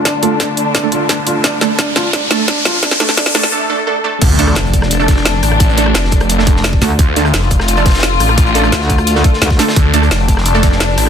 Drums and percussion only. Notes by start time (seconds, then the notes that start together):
0.05 kick, snare, closed hi-hat
0.23 closed hi-hat
0.40 kick, snare, closed hi-hat
0.57 closed hi-hat
0.75 kick, snare, closed hi-hat
0.92 closed hi-hat
1.09 kick, snare, closed hi-hat
1.27 closed hi-hat
1.44 kick, snare, closed hi-hat
1.61 snare, closed hi-hat
1.79 kick, snare, closed hi-hat
1.96 snare, closed hi-hat
2.13 kick, snare, closed hi-hat
2.31 snare, closed hi-hat
2.48 kick, snare, closed hi-hat
2.65 snare, closed hi-hat
2.83 kick, snare, closed hi-hat
2.91 snare
3.00 snare, closed hi-hat
3.09 snare
3.17 kick, snare, closed hi-hat
3.26 snare
3.35 snare, open hi-hat
3.43 snare
4.22 kick, closed hi-hat, crash
4.38 closed hi-hat
4.47 cross-stick, closed hi-hat
4.55 snare, closed hi-hat
4.66 closed hi-hat
4.73 kick, closed hi-hat
4.82 cross-stick, snare
4.91 closed hi-hat
5.00 closed hi-hat
5.08 kick, snare, closed hi-hat
5.17 snare
5.25 snare, closed hi-hat
5.34 snare
5.43 cross-stick, closed hi-hat, open hi-hat
5.52 cross-stick
5.60 kick, closed hi-hat
5.69 closed hi-hat
5.77 closed hi-hat
5.86 cross-stick
5.95 snare, closed hi-hat
6.04 snare
6.12 kick, closed hi-hat
6.20 cross-stick, closed hi-hat
6.29 closed hi-hat
6.39 snare
6.47 kick, closed hi-hat
6.56 snare
6.64 snare, closed hi-hat
6.73 kick
6.81 snare, closed hi-hat, open hi-hat
6.99 kick, closed hi-hat
7.16 closed hi-hat
7.25 cross-stick, closed hi-hat
7.34 snare, closed hi-hat
7.42 closed hi-hat
7.51 kick, closed hi-hat
7.60 cross-stick, snare
7.68 closed hi-hat
7.77 closed hi-hat
7.86 kick, snare, closed hi-hat
7.90 snare, closed hi-hat
7.94 snare, closed hi-hat
7.98 snare, closed hi-hat
8.03 snare, closed hi-hat
8.11 snare
8.20 cross-stick, closed hi-hat, open hi-hat
8.29 cross-stick
8.38 kick, closed hi-hat
8.46 closed hi-hat
8.55 closed hi-hat
8.64 cross-stick, closed hi-hat
8.72 snare, closed hi-hat
8.81 snare
8.89 kick, closed hi-hat
8.98 cross-stick, closed hi-hat
9.07 closed hi-hat
9.15 snare
9.24 kick, closed hi-hat
9.33 snare
9.41 snare, closed hi-hat
9.50 kick, snare
9.59 snare, closed hi-hat, open hi-hat
9.68 snare, closed hi-hat
9.76 kick, closed hi-hat
9.93 closed hi-hat
10.02 cross-stick, closed hi-hat
10.11 snare, closed hi-hat
10.20 closed hi-hat
10.28 kick, closed hi-hat
10.37 cross-stick, snare
10.45 closed hi-hat
10.55 closed hi-hat
10.63 kick, snare, closed hi-hat
10.72 snare
10.80 snare, closed hi-hat
10.89 snare
10.97 cross-stick, closed hi-hat, open hi-hat